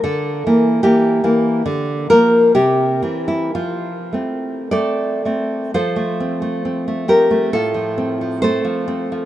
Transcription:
0.04 D3 A4
0.46 E3 A#3
0.83 E3 A#3 G4
1.24 E3 A#3
1.66 D3
2.10 F3 A#3 A#4
2.55 C3 G4
3.02 E3 C4
3.28 E4
3.55 F3 F4
4.13 A3 C4
4.71 A3 C4 A4 D5
5.25 A3 C4
5.74 F3 A4 C5
5.96 A3
6.20 C4
6.42 A3
6.65 C4
6.88 A3
7.08 C4 G4 A#4
7.31 A3
7.53 A2 F4 A4
7.74 F3
7.98 C4
8.21 F3
8.42 A3 A4 C5
8.65 F3
8.88 C4
9.12 F3

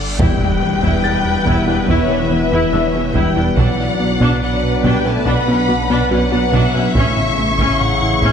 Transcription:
Already playing: G1 D3 D5, reverse cymbal
0.19 E1 E2 E3 G3 B3 E4 B4 G5, taiko, impact
0.41 E2
0.62 E3
0.82 E2 E3 E4, taiko
1.04 E2 A6
1.25 E2
1.46 E1 E2 E3 E4, taiko
1.67 E2 D4 E4
1.88 E1 E2 E3 E4 C#5 E5, taiko
2.08 E2 E3 B3 D4
2.31 E1 E2 E3 B3 E4 B4
2.52 E2 E3 E4
2.72 E1 E2 E3 B3 D4 C#5 E5 E6
2.94 E2 E3 B3 E4
3.14 E1 E2 E3 G3 E4 B4 G5, taiko
3.36 E2 D4 E4
3.56 B1 B2 F#3 B3 D4 B4 D5 F#5, taiko
3.79 B2
4.00 B3
4.20 B2 B3 D4, taiko
4.40 B2 F#3 D5 F#5
4.64 B2
4.83 B1 B2 G3 B3 D4 G5, taiko
5.05 B2 A3 C#4 B4 A5
5.25 B1 B2 B3 D4 D5 F#5 B5, taiko
5.47 B2 B3 C#4 F#4
5.68 B1 B2 B3 D4 F#4
5.90 B2 B3 D4
6.10 B1 B2 F#3 B3 C#4 F#4 D5 F#5
6.31 B2 B3 D4 F#4
6.53 B1 B2 B3 D4 E5, taiko
6.74 B2 C#4 B4
6.95 A1 A2 C#3 E3 A3 C#4 E4 E5 C#6, taiko
7.17 A2, taiko low-mid
7.39 A3
7.59 A2 A3 C#4, taiko
7.81 A2 F#5
8.02 A2
8.22 A1 A2 A3 C#4 E5, taiko

